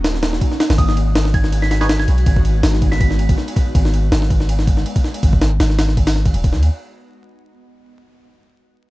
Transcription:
Already playing: 808-style bass D#1, ambient pad A#3 C#4 D#4 F#4
0.04 snare, open hi-hat
0.14 snare
0.23 snare, ride
0.33 snare
0.41 kick, ride
0.52 snare
0.60 snare, ride
0.70 808-style bass G#1, snare, ride
0.78 808-style bass G#1, ambient pad G#3 B3 F#4, synth bell D#6, kick, ride
0.88 synth bell D#6, snare
0.97 ride
1.15 snare, ride
1.25 snare
1.34 synth bell G#6, kick, ride
1.44 snare
1.52 ride
1.62 synth bell B6, snare
1.71 synth bell B6, snare, ride
1.81 synth stab D#4 F#4 G#4 B4, synth bell G#6, snare
1.89 snare, ride
1.99 synth bell G#6, snare
2.08 808-style bass B1, ride
2.18 ride
2.26 808-style bass G#1, kick, ride
2.36 kick
2.45 ride
2.63 808-style bass G#1, snare, open hi-hat
2.73 snare
2.82 kick, ride
2.92 synth bell B6, snare
3.01 synth bell B6, kick, ride
3.11 snare
3.19 ride
3.29 kick, ride
3.38 snare
3.48 ride
3.56 kick, ride
3.75 808-style bass G#1, kick, ride
3.85 snare
3.94 ride
4.12 808-style bass G#1, snare, ride
4.22 snare
4.30 kick, ride
4.40 snare
4.49 ride
4.59 snare
4.67 kick, ride
4.77 snare
4.86 ride
4.96 kick, ride
5.04 snare
5.14 ride
5.23 808-style bass G#1, kick, ride
5.33 kick
5.41 snare, ride
5.60 808-style bass G#1, snare, ride
5.70 snare
5.79 snare, open hi-hat
5.89 snare
5.97 kick, ride
6.07 snare, open hi-hat
6.16 snare
6.25 kick, ride
6.34 808-style bass D#1, ride
6.44 kick, ride
6.53 808-style bass D#2, snare
6.63 ride

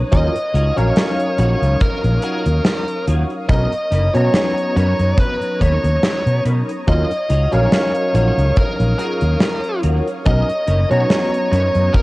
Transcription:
Already playing: string machine C#5 D#6
0.11 fretless electric bass D#2, tine electric piano F#3 C#4 D#4 F4 A#4, lead electric guitar D#5, string machine F5, kick, closed hi-hat
0.35 closed hi-hat
0.53 fretless electric bass C#2, clean electric guitar D#4 F4 F#4 C#5, closed hi-hat
0.76 fretless electric bass A#1, tine electric piano F#3 C#4 D#4 A#4 F5, lead electric guitar C#5, closed hi-hat
0.96 snare, closed hi-hat
1.19 closed hi-hat
1.38 fretless electric bass A#1, clean electric guitar D#4 F4 F#4 C#5, lead electric guitar C#5, closed hi-hat
1.62 fretless electric bass C#2, closed hi-hat
1.80 lead electric guitar A#4, muted fretless electric bass stroke, kick, closed hi-hat
2.04 fretless electric bass A#1, closed hi-hat
2.22 clean electric guitar D#4 F4 F#4 C#5, lead electric guitar A#4, closed hi-hat
2.46 fretless electric bass D#2, closed hi-hat
2.65 snare, closed hi-hat
2.88 closed hi-hat
3.07 fretless electric bass D#2, clean electric guitar D#4 F4 F#4 C#5, closed hi-hat
3.30 closed hi-hat
3.49 fretless electric bass B1, tine electric piano F#3 B3 C#4 D#4 A#4, string machine C#5 A#5, lead electric guitar D#5, kick, closed hi-hat
3.73 closed hi-hat
3.91 fretless electric bass F#1, clean electric guitar D#4 A#4 B4 C#5, closed hi-hat
4.13 fretless electric bass B2, tine electric piano F#3 B3 C#4 D#4 A#5, lead electric guitar C#5, closed hi-hat
4.34 snare, closed hi-hat
4.58 closed hi-hat
4.75 fretless electric bass F#2, clean electric guitar D#4 A#4 B4 C#5, lead electric guitar C#5, closed hi-hat
4.99 fretless electric bass F#2, closed hi-hat
5.18 lead electric guitar B4, kick, closed hi-hat
5.42 closed hi-hat
5.60 fretless electric bass D#2, clean electric guitar D#4 A#4 B4 C#5, lead electric guitar C#5, kick, closed hi-hat
5.84 fretless electric bass D#2, closed hi-hat
6.03 snare, closed hi-hat
6.26 fretless electric bass B2, closed hi-hat
6.44 fretless electric bass B2, clean electric guitar D#4 A#4 B4 C#5, closed hi-hat
6.69 closed hi-hat
6.87 fretless electric bass D#2, tine electric piano F#3 C#4 D#4 F4 A#4, lead electric guitar D#5, string machine F5 D#6, kick, closed hi-hat
7.11 closed hi-hat
7.29 fretless electric bass C#2, clean electric guitar D#4 F4 F#4 C#5, closed hi-hat
7.51 fretless electric bass A#1, tine electric piano F#3 C#4 D#4 A#4 F5, lead electric guitar C#5, closed hi-hat
7.72 snare, closed hi-hat
7.95 closed hi-hat
8.13 fretless electric bass A#1, clean electric guitar D#4 F4 F#4 C#5, lead electric guitar C#5, closed hi-hat
8.38 fretless electric bass C#2, closed hi-hat
8.56 lead electric guitar A#4, kick, closed hi-hat
8.80 fretless electric bass A#1, closed hi-hat
8.98 clean electric guitar D#4 F4 F#4 G#4, lead electric guitar A#4, closed hi-hat
9.21 fretless electric bass D#2, closed hi-hat
9.41 snare, closed hi-hat
9.64 closed hi-hat
9.82 fretless electric bass D#2, clean electric guitar D#4 F4 F#4 A#4, closed hi-hat
10.08 closed hi-hat
10.25 fretless electric bass B1, tine electric piano F#3 B3 C#4 D#4 A#4, lead electric guitar D#5, string machine A#5 D#6, kick, closed hi-hat
10.50 closed hi-hat
10.67 fretless electric bass F#1, clean electric guitar D#4 A#4 B4 C#5, closed hi-hat
10.90 fretless electric bass B2, tine electric piano F#3 B3 C#4 D#4 A#5, lead electric guitar C#5, closed hi-hat
11.10 snare, closed hi-hat
11.34 closed hi-hat
11.52 fretless electric bass F#2, clean electric guitar D#4 A#4 B4 C#5, lead electric guitar C#5, closed hi-hat
11.75 fretless electric bass F#2, closed hi-hat
11.94 lead electric guitar A#4, kick, closed hi-hat

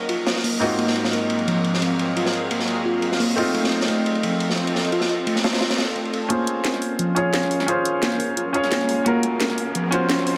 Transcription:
Already playing: grand piano D#3 A#3 C#4 F4 F#4, ambient pad F#3 A#4 D#5
0.09 synth pluck F4, ride
0.27 snare, ride
0.36 snare
0.44 synth pluck A#3, open hi-hat
0.60 grand piano G#2 A#3 C4 D#4 F4 F#4, ambient pad F#3 C4 G#4 F5, ride
0.78 synth pluck A#3, ride
0.87 snare
0.96 ride
1.04 snare
1.13 synth pluck A#3, ride
1.30 ride
1.39 ride
1.47 synth pluck F3, ride
1.64 ride
1.74 snare
1.82 synth pluck C4, ride
1.99 ride
2.16 synth pluck F4, ride
2.26 snare
2.33 ride
2.51 synth pluck A#3, ride
2.60 snare
2.67 ride
2.85 synth pluck F4
3.02 ride
3.12 snare
3.20 synth pluck A#3, open hi-hat
3.35 grand piano A3 C4 D#4 F4, ambient pad F4 A4 D#5, ride
3.54 synth pluck A3, ride
3.64 snare
3.72 ride
3.81 snare
3.88 synth pluck A3, ride
4.06 ride
4.15 ride
4.23 synth pluck F3, ride
4.40 ride
4.50 snare
4.57 synth pluck C4, ride
4.67 ride
4.75 snare
4.85 ride
4.92 synth pluck F4, ride
5.01 snare
5.09 ride
5.27 synth pluck A3, ride
5.36 snare
5.44 snare, ride
5.53 snare, ride
5.61 synth pluck F4, snare, ride
5.70 snare, ride
5.78 snare, ride
5.96 synth pluck A3, ride
6.05 ride
6.13 ride
6.29 synth pluck A#3, grand piano C#4 F4 G#4 C5, ambient pad C#4 G#4 A#4 F5, closed hi-hat, riser
6.47 closed hi-hat
6.65 synth pluck A#3, snare, closed hi-hat
6.74 snare
6.82 open hi-hat
6.99 synth pluck F3, closed hi-hat
7.15 grand piano C#4 F4 G#4 C#5, closed hi-hat
7.33 synth pluck C#4, snare, closed hi-hat
7.43 snare
7.51 open hi-hat
7.60 snare
7.66 grand piano C#4 F4 G#4 C5, synth pluck F4, closed hi-hat
7.85 closed hi-hat
8.03 synth pluck A#3, snare, closed hi-hat
8.12 snare
8.20 open hi-hat
8.37 synth pluck F4, closed hi-hat
8.53 grand piano C#4 F4 G#4 C#5, closed hi-hat
8.64 snare
8.71 synth pluck A#3, snare, closed hi-hat
8.81 snare
8.89 open hi-hat
9.04 ambient pad F#3 A#4 D#5, synth pluck A#3, grand piano C#4 F4 F#4 A#4, closed hi-hat
9.23 closed hi-hat
9.40 synth pluck A#3, snare, closed hi-hat
9.50 snare
9.58 open hi-hat
9.75 synth pluck F3, closed hi-hat
9.91 grand piano C#4 F4 F#4 C5, closed hi-hat
10.09 synth pluck C#4, snare, closed hi-hat
10.19 snare
10.27 open hi-hat

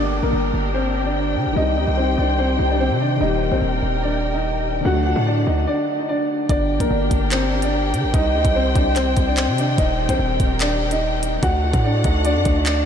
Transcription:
Already playing: 808-style bass G1, felt piano D3 G3 A#3 D4, grand piano D4 D5, string section D4 G4 A#4 G5
0.23 808-style bass A#1, grand piano A#3 A#4
0.33 808-style bass G1
0.54 808-style bass G1
0.74 grand piano C4 C5
1.05 grand piano D4 D5
1.36 808-style bass D3
1.46 808-style bass G1
1.52 felt piano D#3 G3
1.56 808-style bass C2, string section D#3 C5, felt piano C4, grand piano D#4 D#5
1.61 felt piano D#4
1.77 808-style bass D2, grand piano D#4 D#5
1.87 808-style bass C2
1.97 grand piano C4 C5
2.18 808-style bass C2, grand piano D4 D5
2.39 grand piano C4 C5
2.57 808-style bass C2, felt piano D#3 G3 C4
2.61 felt piano D#4
2.70 grand piano D4 D5
2.80 grand piano C4 C5
2.90 808-style bass C3
3.00 grand piano D4 D5
3.16 felt piano D#3 G3
3.21 808-style bass D#1, felt piano A#3, grand piano D#4 D#5, string section A#4
3.25 felt piano G4
3.52 808-style bass A#1, grand piano C4 C5
3.62 808-style bass D#1
3.82 808-style bass D#1
4.03 grand piano D4 D5
4.34 grand piano D#4 D#5
4.81 felt piano D3 F#3
4.85 808-style bass D2, felt piano A3, string section D4 F#4 A4 F#5, grand piano F#4 F#5
4.90 felt piano D4
5.06 grand piano F#4 F#5
5.16 808-style bass A2
5.26 grand piano D4 D5
5.47 808-style bass D2, grand piano D#4 D#5
5.67 grand piano D4 D5
5.98 grand piano D#4 D#5
6.09 grand piano D4 D5
6.49 808-style bass G1, string section D4 G4 A#4 G5, grand piano D4 D5, kick, closed hi-hat
6.80 808-style bass A#1, grand piano A#3 A#4, kick, closed hi-hat
6.91 808-style bass G1
7.11 808-style bass G1, kick, closed hi-hat
7.31 grand piano C4 C5, clap, closed hi-hat
7.62 grand piano D4 D5, closed hi-hat
7.93 808-style bass D3, closed hi-hat
8.04 808-style bass G1
8.14 808-style bass C2, string section D#3 C5, grand piano D#4 D#5, kick, closed hi-hat
8.34 808-style bass D2, grand piano D#4 D#5
8.45 808-style bass C2, kick, closed hi-hat
8.55 grand piano C4 C5
8.76 808-style bass C2, grand piano D4 D5, kick, closed hi-hat
8.96 grand piano C4 C5, clap, closed hi-hat
9.17 808-style bass C2, kick, closed hi-hat
9.27 grand piano D4 D5
9.37 grand piano C4 C5, clap, closed hi-hat
9.47 808-style bass C3
9.58 grand piano D4 D5, closed hi-hat
9.78 808-style bass D#1, grand piano D#4 D#5, string section G4 A#4, kick, closed hi-hat
10.09 808-style bass A#1, grand piano C4 C5, kick, closed hi-hat
10.19 808-style bass D#1
10.40 808-style bass D#1, kick, closed hi-hat
10.60 grand piano D4 D5, clap, closed hi-hat
10.91 grand piano D#4 D#5, closed hi-hat
11.23 closed hi-hat
11.43 808-style bass D2, string section D4 F#4 A4 F#5, grand piano F#4 F#5, kick, closed hi-hat
11.63 grand piano F#4 F#5
11.73 808-style bass A2, kick, closed hi-hat
11.84 grand piano D4 D5
12.04 808-style bass D2, grand piano D#4 D#5, kick, closed hi-hat
12.25 grand piano D4 D5, closed hi-hat
12.35 808-style bass F#2
12.45 808-style bass D2, kick, closed hi-hat
12.56 grand piano D#4 D#5
12.66 grand piano D4 D5, clap, closed hi-hat

